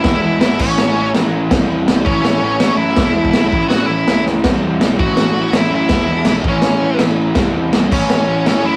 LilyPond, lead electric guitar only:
\new Staff \with { instrumentName = "Lead electric guitar" } { \time 4/4 \key a \lydian \tempo 4 = 164 e'4 e'8 cis'4. r4 | r4. cis'2 e'8~ | e'4 e'8 e'8 fis'8 e'4 r8 | r4. fis'4. e'8 e'8~ |
e'4 e'8 cis'4. r4 | r4. cis'4. cis'8 e'8 | }